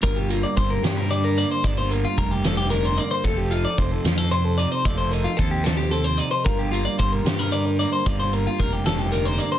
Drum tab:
HH |xxxxxx|xxxxxx|xxxxxx|xxxxxx|
SD |---o--|---o--|---o--|---o--|
BD |o-o---|o-o---|o-o---|o-o---|

HH |xxxxxx|xxxxxx|
SD |---o--|---o--|
BD |o-o---|o-o---|